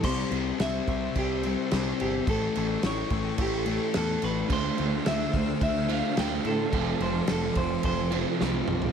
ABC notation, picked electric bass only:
X:1
M:4/4
L:1/8
Q:1/4=108
K:C
V:1 name="Picked electric bass" clef=bass
C,, C,, C,, C,, C,,2 C,, G,,, | A,,, A,,, A,,, A,,, A,,,2 E,, A,,, | D,, D,, D,, D,, D,,2 D,, A,, | F,,, F,,, F,,, F,,, F,,,2 C,, B,,, |]